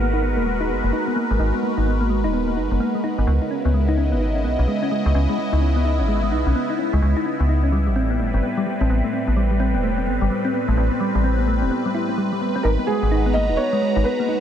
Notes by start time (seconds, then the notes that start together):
Already playing: G#1 G#3 F#4 A#4 B4
0.14 D#4
0.22 B3
0.37 D#1 A#3
0.46 G#3
0.60 D#4
0.69 F#1 B3
0.84 F#1 A#3
0.93 D#4
1.07 B3
1.16 A#3
1.31 G#1 G#3
1.40 G#1 D#4
1.54 B3
1.63 A#3
1.78 G#1 D#4
1.86 B3
2.01 A#3
2.10 G#3
2.24 D#1 D#4
2.33 B3
2.48 A#3
2.57 F#1 D#4
2.71 F#1 B3
2.80 A#3
2.95 G#3
3.04 D#4
3.18 G#1 B3
3.27 C#2 C#3 B3
3.42 D#4
3.47 C#4 E4
3.57 B3
3.65 C#2 B3
3.73 G#3 D#5
3.89 D#4
3.98 C#4
4.12 G#1 B3
4.21 D#4
4.35 C#4
4.44 B1 B3
4.59 B1 C#4
4.68 G#3
4.82 C#4
4.91 G#3
5.06 C#2 G#3
5.15 C#2 C#4
5.29 G#3
5.38 G#3
5.53 C#2 D#4
5.62 C#4
5.76 B3
5.85 D#4
6.00 G#1 C#4
6.08 G#3
6.23 G#3
6.32 B1 D#4
6.46 B1 C#4
6.55 B3
6.70 D#4
6.79 C#4
6.93 C#2 G#3
7.02 C#2 G#3
7.17 D#4
7.25 C#4
7.40 C#2 B3
7.49 D#4
7.64 C#4
7.72 A2 G3
7.81 G3
7.87 A1 G3
7.96 C4
8.10 B3
8.15 B4
8.19 G1 A3
8.34 G1 C4
8.43 B3
8.57 G3
8.66 G3
8.81 A1 C4
8.90 A1 B3
9.04 A3
9.13 C4
9.28 A1 B3
9.37 G3
9.51 G3
9.60 C4
9.75 E1 B3
9.83 A3
9.98 C4
10.07 G1 B3
10.21 G1 G3
10.30 G3
10.45 C4
10.54 B3
10.68 A1 A3
10.77 A1 C4
10.92 B3
11.00 G3
11.15 A1 G3
11.24 C4
11.39 B3
11.47 A3
11.62 E1 C4
11.71 B3
11.85 G3
11.94 E4
12.09 C4
12.18 G3
12.32 G3
12.41 B3
12.56 C4
12.63 G#1 G#3 D#4 A#4
12.72 F#4
12.79 B3
12.87 G#3 G#4
13.03 G#1 G#3 A#5
13.12 D#4
13.26 B3
13.33 A#3 D#5
13.49 D#1 D#4
13.57 B3 C#5
13.73 G#3
13.82 G#3
13.96 G#1 D#4
14.04 B3 B4
14.20 A#3
14.29 D#4